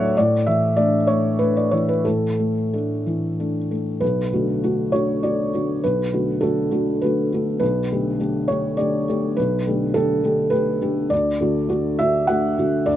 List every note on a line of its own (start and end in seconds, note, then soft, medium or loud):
0.00 0.12 D2 medium
0.00 0.17 A2 soft
0.00 0.17 F#3 medium
0.00 0.17 A3 medium
0.00 0.17 D4 medium
0.00 0.17 B4 medium
0.00 0.18 C#5 loud
0.00 0.17 D5 loud
0.00 0.17 E5 medium
0.00 0.15 F#5 medium
0.17 2.02 A2 medium
0.17 0.46 D5 medium
0.46 0.95 E3 soft
0.46 0.77 E5 medium
0.76 1.05 A3 soft
0.76 1.05 D4 soft
0.76 1.07 D5 medium
1.07 1.39 A3 soft
1.07 1.38 C#5 medium
1.39 1.68 A3 soft
1.39 1.69 D4 soft
1.39 1.55 B4 medium
1.57 1.72 D5 medium
1.71 2.25 E3 soft
1.71 1.88 C#5 medium
1.89 2.05 B4 medium
2.05 3.98 A2 soft
2.05 3.70 A4 medium
2.40 2.72 A3 soft
2.73 3.02 A3 soft
2.73 3.02 D4 soft
3.06 3.57 E3 soft
3.40 3.68 A3 soft
3.40 3.68 D4 soft
3.71 4.02 A3 soft
4.00 4.31 B1 soft
4.00 4.92 B4 medium
4.32 4.59 D3 soft
4.32 4.60 A3 soft
4.32 4.60 F#4 soft
4.64 4.90 D3 soft
4.64 4.90 A3 soft
4.64 4.90 F#4 soft
4.92 5.20 D3 soft
4.92 5.20 A3 soft
4.92 5.20 F#4 soft
4.92 5.22 C#5 medium
5.23 5.49 D3 soft
5.23 5.50 A3 soft
5.23 5.50 F#4 soft
5.23 5.82 D5 medium
5.54 5.80 D3 soft
5.54 5.80 A3 soft
5.54 5.80 F#4 soft
5.84 6.12 B1 soft
5.84 6.42 B4 medium
6.13 6.39 D3 soft
6.13 6.39 A3 soft
6.13 6.39 F#4 soft
6.41 6.68 D3 soft
6.41 6.69 A3 soft
6.41 6.69 F#4 soft
6.41 7.01 A4 medium
6.71 6.98 D3 soft
6.71 6.98 A3 soft
6.71 6.99 F#4 soft
7.02 7.29 D3 soft
7.02 7.29 A3 soft
7.02 7.30 F#4 soft
7.02 7.58 B4 medium
7.33 7.59 D3 soft
7.33 7.59 A3 soft
7.33 7.59 F#4 soft
7.60 7.89 B1 soft
7.60 8.48 B4 medium
7.92 8.18 D3 soft
7.92 8.18 A3 soft
7.92 8.18 G4 soft
8.19 8.46 D3 soft
8.19 8.46 A3 soft
8.19 8.46 G4 soft
8.48 8.75 D3 soft
8.48 8.76 A3 soft
8.48 8.75 G4 soft
8.48 8.78 C#5 medium
8.77 9.05 D3 soft
8.77 9.05 A3 soft
8.77 9.05 G4 soft
8.77 9.36 D5 medium
9.09 9.35 D3 soft
9.09 9.35 A3 soft
9.09 9.35 G4 soft
9.37 9.65 B1 soft
9.37 9.94 B4 medium
9.67 9.92 D3 soft
9.67 9.93 A3 soft
9.67 9.93 G4 soft
9.94 10.21 D3 soft
9.94 10.21 A3 soft
9.94 10.21 G4 soft
9.94 10.52 A4 medium
10.23 10.49 D3 soft
10.23 10.50 A3 soft
10.23 10.50 G4 soft
10.50 10.78 D3 soft
10.50 10.78 A3 soft
10.50 10.79 G4 soft
10.50 11.10 B4 medium
10.81 11.08 D3 soft
10.81 11.08 A3 soft
10.81 11.09 G4 soft
11.10 11.39 D2 medium
11.10 11.98 D5 medium
11.41 11.67 D3 soft
11.41 11.67 A3 soft
11.41 11.68 F#4 soft
11.69 11.95 D3 soft
11.69 11.96 A3 soft
11.69 11.96 F#4 medium
11.99 12.25 D3 soft
11.99 12.26 A3 soft
11.99 12.26 F#4 soft
11.99 12.28 E5 medium
12.27 12.55 D3 soft
12.27 12.55 A3 soft
12.27 12.55 F#4 soft
12.27 12.86 F#5 medium
12.58 12.84 D3 soft
12.58 12.85 A3 soft
12.58 12.85 F#4 soft
12.86 12.96 D2 medium
12.86 12.96 D5 medium